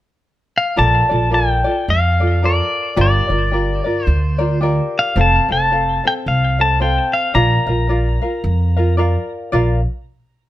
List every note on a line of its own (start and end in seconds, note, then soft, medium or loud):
0.58 0.80 F5 medium
0.76 1.00 A#1 medium
0.76 1.10 F4 medium
0.76 1.09 A4 medium
0.76 1.10 A#4 medium
0.76 1.08 D5 medium
0.76 1.30 A5 loud
1.09 1.61 A#1 medium
1.09 1.30 F4 soft
1.09 1.30 A4 soft
1.09 1.31 D5 soft
1.30 1.65 F4 soft
1.30 1.64 A4 medium
1.30 1.64 A#4 soft
1.30 1.63 D5 medium
1.34 1.90 G5 medium
1.64 2.22 F4 soft
1.64 2.20 A4 soft
1.64 2.20 D5 medium
1.88 2.59 F2 medium
1.88 2.46 F5 medium
2.20 2.42 F4 soft
2.20 2.42 A4 soft
2.20 2.42 D5 medium
2.42 2.96 F4 medium
2.42 2.97 A4 medium
2.42 2.97 A#4 medium
2.42 2.96 D5 medium
2.42 3.00 D5 medium
2.96 3.19 G1 loud
2.96 3.30 F4 medium
2.96 3.30 G4 medium
2.96 3.30 A#4 medium
2.96 3.28 D5 medium
3.01 4.06 D5 medium
3.29 3.80 G1 medium
3.29 3.51 F4 soft
3.29 3.52 A#4 soft
3.29 3.52 D5 soft
3.51 3.85 F4 medium
3.51 3.85 G4 medium
3.51 3.84 A#4 soft
3.51 3.83 D5 medium
3.84 4.40 F4 soft
3.84 4.38 A#4 soft
3.84 4.37 D5 soft
4.06 4.78 D2 medium
4.06 4.60 C5 medium
4.38 4.60 F4 soft
4.38 4.60 A#4 medium
4.38 4.61 D5 medium
4.61 5.16 F4 medium
4.61 5.16 G4 medium
4.61 5.16 A#4 medium
4.61 5.17 D5 medium
4.99 5.17 F5 medium
5.16 5.37 F1 medium
5.16 5.49 C4 medium
5.16 5.50 A4 medium
5.16 5.49 C5 medium
5.16 5.48 F5 medium
5.21 5.51 A5 medium
5.48 5.98 F1 medium
5.48 5.70 C4 soft
5.48 5.71 A4 soft
5.48 5.71 F5 medium
5.48 6.07 A5 medium
5.71 6.04 C4 medium
5.71 6.04 A4 medium
5.71 6.04 C5 medium
5.71 6.02 F5 soft
6.04 6.59 C4 soft
6.04 6.58 A4 medium
6.04 6.59 F5 soft
6.04 6.13 G5 medium
6.26 6.97 C2 medium
6.26 6.60 F5 medium
6.59 6.79 C4 soft
6.59 6.80 A4 soft
6.59 6.81 F5 medium
6.59 6.81 A5 medium
6.80 7.35 C4 medium
6.80 7.35 A4 medium
6.80 7.34 C5 medium
6.80 7.35 F5 medium
6.80 7.15 G5 medium
7.13 7.36 F5 medium
7.34 7.56 A#1 medium
7.34 7.68 F4 medium
7.34 7.67 A#4 medium
7.34 7.67 D5 medium
7.34 7.66 F5 medium
7.34 8.95 A#5 loud
7.67 8.17 A#1 medium
7.67 7.88 F4 soft
7.67 7.89 A#4 soft
7.67 7.89 F5 soft
7.89 8.22 F4 medium
7.89 8.21 A#4 soft
7.89 8.21 D5 medium
7.89 8.20 F5 medium
8.21 8.78 F4 soft
8.21 8.77 A#4 medium
8.21 8.76 F5 medium
8.44 9.15 F2 medium
8.76 8.97 F4 soft
8.76 8.97 A#4 medium
8.76 8.98 F5 soft
8.97 9.52 F4 medium
8.97 9.54 A#4 medium
8.97 9.52 D5 medium
8.97 9.54 F5 medium
9.52 9.84 A#1 medium
9.52 9.79 F4 medium
9.52 9.80 A#4 medium
9.52 9.79 D5 medium
9.52 9.80 F5 medium